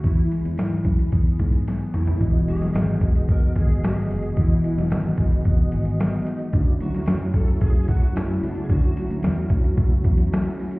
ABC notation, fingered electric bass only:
X:1
M:4/4
L:1/16
Q:1/4=111
K:E
V:1 name="Fingered electric bass" clef=bass
E,,2 z E,, G,,2 F,,2 E,,2 G,,4 z2 | E,,,2 E,,,2 G,,,2 E,,,4 G,,,2 G,,,2 F,,,2 | E,,,2 z E,,, G,,,2 F,,,2 E,,,2 G,,,4 z2 | =D,,2 D,,2 F,,2 D,,4 F,,2 F,,2 C,,2 |
=D,,2 z D,, E,,2 D,,2 C,,2 E,,4 z2 |]